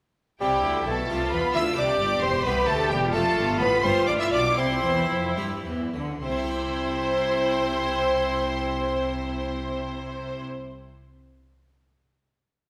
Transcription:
0.41 C2 C3 G3 C4 E4 G4 G5
0.64 D2 D3
0.86 B1 B2 A3 A4 A5
1.09 C2 C3 D4 F4 G4
1.31 E2 E3 B3 B4 B5
1.54 D2 D3 E4 E5 E6
1.77 C2 C3 D4 G4 D5 D6
2.00 G1 G2
2.23 E1 E2 C4 C5 C6
2.45 C2 B3 C4 E4 G4 B4 B5
2.67 D2 A3 A4 A5
2.89 E1 E2 G3 G4 G5
3.13 F1 F2 A3 D4 F4 A4 A5
3.36 G1 G2
3.59 A1 A2 B3 B4 B5
3.83 G1 G2 B3 C4 F4 G4 C5 C6
4.07 A1 A2 D4 D5 D6
4.20 E4 E5 E6
4.32 B1 B2 D4 D5 D6
4.57 C2 C3 C4 E4 C5 C6
4.84 E2 E3
5.10 F2 F3
5.37 G2 G3 C4 E4 G4
5.65 E2 E3
5.94 D2 D3
6.22 C2 C3 C4 E4 C5 C6
6.30 C4
6.37 E4
6.44 G4
6.51 E5

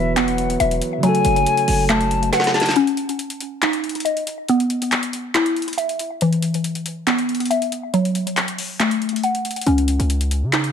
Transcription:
Already playing: E1 E3 F#3 B3 E4 F#4 B4 E5
0.17 B3 F#5, clap, closed hi-hat
0.28 closed hi-hat
0.38 closed hi-hat
0.50 closed hi-hat
0.60 E1 E5, closed hi-hat
0.71 closed hi-hat
0.82 closed hi-hat
0.98 C#3 F#3
1.03 F#3 A3 C#4 F#4 A4 G#5, closed hi-hat
1.09 A4
1.15 closed hi-hat
1.25 F#1, closed hi-hat
1.36 closed hi-hat
1.46 closed hi-hat
1.57 closed hi-hat
1.68 F#1, open hi-hat
1.89 A3 A5, clap, closed hi-hat
2.01 closed hi-hat
2.11 closed hi-hat
2.23 closed hi-hat
2.32 F#5, snare, closed hi-hat
2.40 snare
2.44 snare, closed hi-hat
2.54 A5, snare, closed hi-hat
2.60 snare, closed hi-hat
2.66 snare, closed hi-hat
2.71 closed hi-hat
2.76 C#4, closed hi-hat
2.87 closed hi-hat
2.97 closed hi-hat
3.09 closed hi-hat
3.19 closed hi-hat
3.30 closed hi-hat
3.41 closed hi-hat
3.62 D#4, clap, closed hi-hat
3.73 closed hi-hat
3.84 closed hi-hat
3.89 closed hi-hat
3.95 closed hi-hat
4.00 closed hi-hat
4.05 D#5, closed hi-hat
4.17 closed hi-hat
4.27 closed hi-hat
4.49 B3, closed hi-hat
4.60 closed hi-hat
4.70 closed hi-hat
4.82 closed hi-hat
4.92 clap, closed hi-hat
5.03 closed hi-hat
5.13 closed hi-hat
5.35 E4, clap, closed hi-hat
5.46 closed hi-hat
5.56 closed hi-hat
5.62 closed hi-hat
5.68 closed hi-hat
5.73 closed hi-hat
5.78 E5, closed hi-hat
5.89 closed hi-hat
5.99 closed hi-hat
6.21 E3, closed hi-hat
6.33 closed hi-hat
6.42 closed hi-hat
6.54 closed hi-hat
6.64 closed hi-hat
6.75 closed hi-hat
6.86 closed hi-hat
7.07 B3, clap, closed hi-hat
7.18 closed hi-hat
7.29 closed hi-hat
7.35 closed hi-hat
7.40 closed hi-hat
7.46 closed hi-hat
7.50 E5, closed hi-hat
7.62 closed hi-hat
7.72 closed hi-hat
7.94 F#3, closed hi-hat
8.05 closed hi-hat
8.15 closed hi-hat
8.27 closed hi-hat
8.37 clap, closed hi-hat
8.48 closed hi-hat
8.58 open hi-hat
8.80 A3, clap, closed hi-hat
8.91 closed hi-hat
9.02 closed hi-hat
9.09 closed hi-hat
9.16 closed hi-hat
9.23 F#5, closed hi-hat
9.35 closed hi-hat
9.45 closed hi-hat
9.51 closed hi-hat
9.56 closed hi-hat
9.61 closed hi-hat
9.66 C#2 C#4, closed hi-hat
9.78 closed hi-hat
9.88 closed hi-hat
9.99 C#2, closed hi-hat
10.10 closed hi-hat
10.21 closed hi-hat
10.31 closed hi-hat
10.43 C#3
10.53 D#4, clap, closed hi-hat
10.64 closed hi-hat

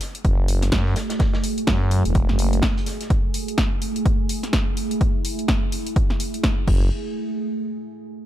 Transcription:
Already playing: A3 F#4 G#4
0.01 snare, open hi-hat
0.15 closed hi-hat
0.24 F#1, kick, closed hi-hat, shaker
0.48 open hi-hat, shaker
0.62 snare, closed hi-hat
0.72 F#2, kick, snare, closed hi-hat
0.86 snare
0.96 snare, open hi-hat, shaker
1.10 snare, closed hi-hat, shaker
1.19 kick, snare, closed hi-hat, shaker
1.33 snare, shaker
1.43 open hi-hat, shaker
1.58 closed hi-hat
1.67 F#2, kick, snare, closed hi-hat
1.91 open hi-hat, shaker
2.05 E1, closed hi-hat
2.15 kick, closed hi-hat, shaker
2.29 F#1, snare
2.38 open hi-hat, shaker
2.53 closed hi-hat
2.62 kick, snare, closed hi-hat, shaker
2.77 closed hi-hat
2.86 snare, open hi-hat, shaker
3.01 snare, closed hi-hat
3.10 E4, kick, closed hi-hat
3.34 open hi-hat
3.48 closed hi-hat
3.58 kick, snare, closed hi-hat
3.82 open hi-hat
3.96 closed hi-hat
4.06 kick, closed hi-hat
4.29 open hi-hat
4.43 snare, closed hi-hat
4.53 kick, snare, closed hi-hat
4.77 open hi-hat
4.91 closed hi-hat
5.01 kick, closed hi-hat
5.25 open hi-hat
5.39 closed hi-hat
5.48 kick, snare, closed hi-hat
5.72 open hi-hat
5.87 closed hi-hat
5.96 kick, closed hi-hat
6.10 snare
6.20 open hi-hat
6.34 closed hi-hat
6.44 kick, snare, closed hi-hat
6.68 F#1, kick, crash

